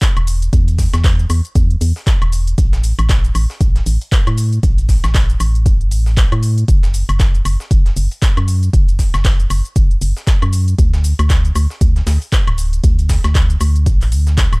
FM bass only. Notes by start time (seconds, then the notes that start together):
0.17 E1
0.53 E2
0.94 E2
1.30 E2
1.55 E2
1.81 E2
2.22 E1
2.58 A1
2.99 A1
3.35 A1
3.61 A1
3.86 A1
4.27 A2
4.63 A1
5.04 A1
5.40 A1
5.66 G1
5.92 A1
6.32 A2
6.68 F#1
7.09 F#1
7.45 F#1
7.71 F#1
7.96 F#1
8.37 F#2
8.73 F#1
9.14 F#1
9.50 F#1
9.76 F#1
10.02 F#1
10.42 F#2
10.79 D2
11.19 D2
11.56 D2
11.81 D2
12.07 D2
12.47 D1
12.84 D2
13.24 D2
13.61 D2
13.86 A1
14.12 D2
14.53 D1